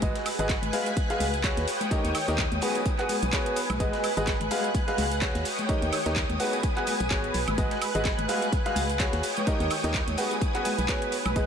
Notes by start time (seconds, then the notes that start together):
0.02 G#1 G#3 F#4 G#4 B4 D#5 G#5 F#6, kick, closed hi-hat, tambourine, shaker
0.16 snare, closed hi-hat
0.26 closed hi-hat, open hi-hat, tambourine, high woodblock, shaker
0.39 G#1 G#3 F#4 G#4 B4 D#5, closed hi-hat, tambourine, shaker
0.49 kick, snare, clap, closed hi-hat, shaker
0.62 G#1, closed hi-hat, high conga
0.73 G#3 F#4 G#4 B4 F5, closed hi-hat, open hi-hat, tambourine, shaker
0.86 closed hi-hat, tambourine, shaker
0.97 kick, closed hi-hat, tambourine, shaker
1.10 G#3 F#4 G#4 B4 F5, snare, closed hi-hat
1.20 C#2, closed hi-hat, open hi-hat, tambourine, high conga, shaker
1.34 closed hi-hat, tambourine, shaker
1.44 F#4 G#4 B4 C#5, kick, snare, clap, closed hi-hat, tambourine, shaker
1.57 D#2, snare, closed hi-hat
1.67 C#5 G5 D#6, closed hi-hat, open hi-hat, tambourine, shaker
1.81 closed hi-hat, tambourine, high conga, shaker
1.91 D#3 G4 A#4 C#5 D#5, kick, closed hi-hat, shaker
2.04 D#2, closed hi-hat
2.15 snare, closed hi-hat, open hi-hat, tambourine, high woodblock, shaker
2.28 D#2 D#3 G4 A#4 C#5 D#5, snare, closed hi-hat, tambourine, shaker
2.38 kick, snare, clap, closed hi-hat, tambourine, shaker
2.52 D#2, closed hi-hat, high conga
2.61 B3 F#4 G#4 B4 F#5 G#5, open hi-hat, tambourine, shaker
2.75 closed hi-hat, tambourine, shaker
2.86 kick, closed hi-hat, tambourine, shaker
2.99 B3 F#4 G#4 B4 F#5, clap, closed hi-hat
3.09 closed hi-hat, open hi-hat, tambourine, high conga, shaker
3.22 B1, closed hi-hat, tambourine, shaker
3.33 B3 F#4 G#4 B4 C#5, kick, snare, clap, closed hi-hat, shaker
3.46 closed hi-hat
3.56 closed hi-hat, open hi-hat, tambourine, shaker
3.70 B1, closed hi-hat, tambourine, high conga, high woodblock, shaker
3.80 G#1 G#3 F#4 G#4 B4 D#5 F#6, kick, closed hi-hat, tambourine, shaker
3.93 snare, closed hi-hat
4.04 closed hi-hat, open hi-hat, tambourine, high woodblock, shaker
4.17 G#1 G#3 F#4 G#4 B4 D#5, closed hi-hat, tambourine, shaker
4.27 kick, snare, clap, closed hi-hat, shaker
4.40 G#1, closed hi-hat, high conga
4.51 G#3 F#4 G#4 B4 F5, closed hi-hat, open hi-hat, tambourine, shaker
4.64 closed hi-hat, tambourine, shaker
4.74 kick, closed hi-hat, tambourine, shaker
4.88 G#3 F#4 G#4 B4 F5, snare, closed hi-hat
4.98 C#2, closed hi-hat, open hi-hat, tambourine, high conga, shaker
5.12 closed hi-hat, tambourine, shaker
5.21 F#4 G#4 B4 C#5, kick, snare, clap, closed hi-hat, shaker
5.35 D#2, snare, closed hi-hat
5.45 C#5 G5 D#6, closed hi-hat, open hi-hat, tambourine, shaker
5.59 closed hi-hat, tambourine, high conga, shaker
5.69 D#3 G4 A#4 C#5 D#5, kick, closed hi-hat, tambourine, shaker
5.82 D#2, closed hi-hat
5.93 snare, closed hi-hat, open hi-hat, tambourine, high woodblock, shaker
6.06 D#2 D#3 G4 A#4 C#5 D#5, snare, closed hi-hat, tambourine, shaker
6.16 kick, snare, clap, closed hi-hat, tambourine, shaker
6.30 D#2, closed hi-hat, high conga
6.40 B3 F#4 G#4 B4 F#5 G#5, open hi-hat, tambourine, shaker
6.53 closed hi-hat, tambourine, shaker
6.63 kick, closed hi-hat, tambourine, shaker
6.77 B3 F#4 G#4 B4 F#5, clap, closed hi-hat
6.87 closed hi-hat, open hi-hat, tambourine, high conga, shaker
7.00 B1, closed hi-hat, tambourine, shaker
7.10 G#1 B3 F#4 G#4 B4 C#5, kick, snare, clap, closed hi-hat, tambourine, shaker
7.24 closed hi-hat
7.34 B1, closed hi-hat, open hi-hat, tambourine, shaker
7.48 G#1, closed hi-hat, tambourine, high conga, high woodblock, shaker
7.58 G#1 G#3 F#4 G#4 B4 D#5 G#5 F#6, kick, closed hi-hat, tambourine, shaker
7.71 snare, closed hi-hat
7.82 closed hi-hat, open hi-hat, tambourine, high woodblock, shaker
7.95 G#1 G#3 F#4 G#4 B4 D#5, closed hi-hat, tambourine, shaker
8.05 kick, snare, clap, closed hi-hat, shaker
8.18 G#1, closed hi-hat, high conga
8.28 G#3 F#4 G#4 B4 F5, closed hi-hat, open hi-hat, tambourine, shaker
8.41 closed hi-hat, tambourine, shaker
8.52 kick, closed hi-hat, shaker
8.66 G#3 F#4 G#4 B4 F5, snare, closed hi-hat
8.76 C#2, closed hi-hat, open hi-hat, tambourine, high conga, shaker
8.90 closed hi-hat, tambourine, shaker
9.00 F#4 G#4 B4 C#5, kick, snare, clap, closed hi-hat, shaker
9.13 D#2, snare, closed hi-hat
9.23 C#5 G5 D#6, closed hi-hat, open hi-hat, tambourine, shaker
9.37 closed hi-hat, tambourine, high conga, shaker
9.47 D#3 G4 A#4 C#5 D#5, kick, closed hi-hat, tambourine, shaker
9.60 D#2, closed hi-hat
9.70 snare, closed hi-hat, open hi-hat, tambourine, high woodblock, shaker
9.84 D#2 D#3 G4 A#4 C#5 D#5, snare, closed hi-hat, tambourine, shaker
9.94 kick, snare, clap, closed hi-hat, tambourine, shaker
10.07 D#2, closed hi-hat, high conga
10.17 B3 F#4 G#4 B4 F#5 G#5, open hi-hat, tambourine, shaker
10.31 closed hi-hat, tambourine, shaker
10.41 kick, closed hi-hat, tambourine, shaker
10.55 B3 F#4 G#4 B4 F#5, clap, closed hi-hat
10.65 closed hi-hat, open hi-hat, tambourine, high conga, shaker
10.78 B1, closed hi-hat, tambourine, shaker
10.89 B3 F#4 G#4 B4 C#5, kick, snare, clap, closed hi-hat, shaker
11.02 closed hi-hat
11.12 closed hi-hat, open hi-hat, tambourine, shaker
11.26 B1, closed hi-hat, tambourine, high conga, high woodblock, shaker
11.36 G#1 G#3 F#4 G#4 B4 D#5 G#5 F#6, kick, closed hi-hat, tambourine, shaker